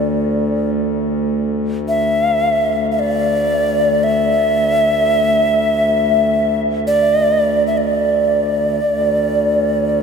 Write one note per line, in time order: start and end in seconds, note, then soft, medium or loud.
0.00 8.80 D2 soft
0.00 0.19 A3 soft
0.00 0.71 D5 medium
1.88 2.87 E5 medium
2.92 3.01 E5 soft
2.99 4.05 D5 medium
4.03 6.60 E5 medium
6.87 7.66 D5 medium
7.67 7.79 E5 soft
7.77 10.03 D5 medium
8.81 10.03 D2 medium